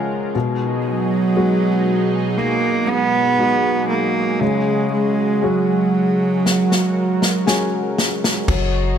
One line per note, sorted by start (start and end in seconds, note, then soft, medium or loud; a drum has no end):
0.00 0.30 C#3 medium
0.00 0.31 C#3 medium
0.00 0.31 F3 medium
0.00 0.31 G#3 medium
0.00 0.31 G#3 soft
0.00 0.32 C#4 soft
0.00 0.31 F4 medium
0.00 0.32 F4 soft
0.00 0.33 A#4 medium
0.00 0.37 C#5 medium
0.00 0.37 D#5 medium
0.00 0.36 F5 medium
0.00 0.37 F#5 medium
0.00 0.32 G#5 medium
0.33 4.37 B2 medium
0.33 4.38 B2 medium
0.33 8.43 F#3 medium
0.33 4.37 G#3 medium
0.33 4.37 D#4 medium
0.33 6.41 G#4 medium
0.86 2.39 F#3 medium
1.36 2.35 G#3 soft
1.36 2.35 B3 soft
1.36 2.35 F#4 medium
2.38 2.91 A#3 medium
2.89 3.89 B3 loud
3.39 4.38 G#3 soft
3.39 4.38 D#4 soft
3.39 4.38 F#4 soft
3.90 4.43 A#3 medium
4.41 8.44 C#3 medium
4.41 4.92 G#3 medium
4.41 8.44 G#3 medium
4.41 8.45 F#4 medium
4.93 5.45 G#3 medium
5.42 7.98 F#3 medium
5.42 6.41 G#3 soft
5.42 6.42 C#4 soft
5.42 6.42 F#4 soft
6.45 8.46 A#4 medium
6.45 snare soft
6.72 snare soft
7.22 snare medium
7.46 8.45 G#3 soft
7.46 8.45 C#4 soft
7.46 8.46 F#4 soft
7.46 8.44 G#5 medium
7.46 snare medium
7.98 snare medium
8.24 snare medium
8.48 8.98 F#1 loud
8.48 8.98 F#3 medium
8.48 8.98 F#4 medium
8.48 8.98 C#5 medium
8.48 8.98 D#5 medium
8.48 8.98 A#5 medium
8.48 kick medium
8.48 floor tom medium
8.48 crash medium